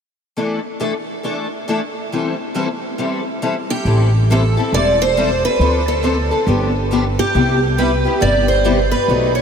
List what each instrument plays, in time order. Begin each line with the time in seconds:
0.37 steel-string acoustic guitar E3 A3 D4 E4 A4
0.80 steel-string acoustic guitar E3 A3 D4 E4 A4
1.23 steel-string acoustic guitar E3 A3 D4 E4 A4
1.68 steel-string acoustic guitar E3 A3 D4 E4 A4
2.12 steel-string acoustic guitar E3 G3 C4 E4 A4
2.54 steel-string acoustic guitar E3 G3 C4 E4 A4
2.98 steel-string acoustic guitar E3 G3 C4 E4 A4
3.42 steel-string acoustic guitar E3 G3 C4 E4 A4
3.70 steel-string acoustic guitar G4
3.85 upright bass A1, steel-string acoustic guitar E3 G3 C4 E4 A4
4.30 steel-string acoustic guitar E3 G3 C4 E4 A4
4.57 steel-string acoustic guitar C4 E4 A4
4.72 upright bass E1, steel-string acoustic guitar E3 G3 C4 E4 A4 D5
5.02 steel-string acoustic guitar C5
5.17 steel-string acoustic guitar E3 G3 C4 E4 A4
5.45 steel-string acoustic guitar B4
5.59 upright bass D2, steel-string acoustic guitar D3 F3 C4 D4 A4
5.88 steel-string acoustic guitar A4
6.03 steel-string acoustic guitar D3 F3 C4 D4 A4
6.31 steel-string acoustic guitar C4 D4 A4
6.47 upright bass G1, steel-string acoustic guitar D3 F3 B3 D4 G4
6.91 steel-string acoustic guitar D3 F3 B3 D4 G4
7.19 steel-string acoustic guitar G4
7.34 upright bass C2, steel-string acoustic guitar C3 G3 B3 E4 G4
7.78 steel-string acoustic guitar C3 G3 B3 E4 G4 B4
8.05 steel-string acoustic guitar B3 E4 G4
8.20 upright bass G1, steel-string acoustic guitar C3 G3 B3 E4 G4 D5
8.48 steel-string acoustic guitar C5
8.64 steel-string acoustic guitar C3 G3 B3 E4 G4
8.91 steel-string acoustic guitar B4
9.08 upright bass B1, steel-string acoustic guitar B2 F#3 A3 D#4 F#4
9.35 steel-string acoustic guitar C#5